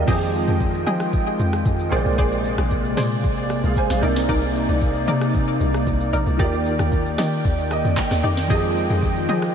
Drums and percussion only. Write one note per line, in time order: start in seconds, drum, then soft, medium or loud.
0.08 kick loud
0.08 crash medium
0.08 shaker medium
0.21 shaker medium
0.34 shaker medium
0.48 shaker medium
0.60 kick loud
0.60 shaker medium
0.74 shaker medium
0.87 shaker medium
1.00 cross-stick medium
1.00 shaker medium
1.13 kick loud
1.13 shaker medium
1.39 shaker medium
1.53 cross-stick medium
1.53 shaker medium
1.65 kick medium
1.65 shaker medium
1.79 shaker medium
1.92 shaker medium
2.06 shaker soft
2.18 kick loud
2.18 shaker medium
2.32 shaker soft
2.45 shaker medium
2.58 cross-stick loud
2.58 shaker soft
2.71 kick medium
2.71 shaker medium
2.85 shaker medium
2.97 cross-stick loud
2.97 snare medium
2.97 shaker medium
3.11 shaker medium
3.24 kick loud
3.24 shaker medium
3.50 cross-stick medium
3.50 shaker medium
3.64 shaker medium
3.76 kick medium
3.76 shaker medium
3.90 cross-stick medium
3.90 snare medium
3.90 shaker medium
4.03 shaker medium
4.16 snare medium
4.16 shaker soft
4.29 kick loud
4.29 shaker medium
4.43 shaker medium
4.55 shaker medium
4.69 shaker medium
4.82 kick loud
4.82 shaker medium
4.95 shaker medium
5.08 shaker medium
5.21 cross-stick medium
5.21 shaker soft
5.34 kick loud
5.34 shaker medium
5.61 shaker medium
5.74 cross-stick medium
5.74 shaker medium
5.87 kick medium
5.87 shaker medium
6.01 shaker medium
6.13 shaker medium
6.27 shaker soft
6.39 kick loud
6.39 shaker medium
6.53 shaker medium
6.66 shaker medium
6.79 cross-stick medium
6.79 shaker soft
6.92 kick loud
6.92 shaker medium
7.06 shaker medium
7.18 cross-stick loud
7.18 snare medium
7.18 shaker medium
7.32 shaker medium
7.45 kick loud
7.45 shaker medium
7.58 shaker medium
7.71 cross-stick medium
7.71 shaker medium
7.85 shaker medium
7.97 kick medium
7.97 clap loud
7.97 shaker medium
8.11 cross-stick medium
8.11 snare medium
8.11 shaker medium
8.23 shaker medium
8.37 snare medium
8.37 shaker soft
8.50 kick loud
8.50 shaker medium
8.64 shaker medium
8.76 shaker medium
8.90 shaker medium
9.03 kick loud
9.03 shaker medium
9.16 shaker soft
9.29 shaker medium
9.42 cross-stick medium
9.42 shaker medium